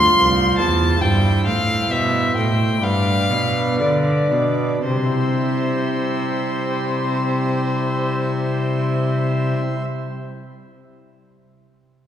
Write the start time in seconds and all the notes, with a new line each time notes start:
Already playing: D2 F4 C5 C6
0.16 C2
0.58 E2 A5
0.98 G2 E4 C5 G5
1.45 A2 F5
1.90 B2 E5
2.35 A2 G5
2.80 G2 D4 B4 F5
3.30 B2
3.80 D3 D5
4.31 B2
4.83 C3 C5
4.91 G3
4.98 C4
5.05 E4
5.12 C5
5.19 E5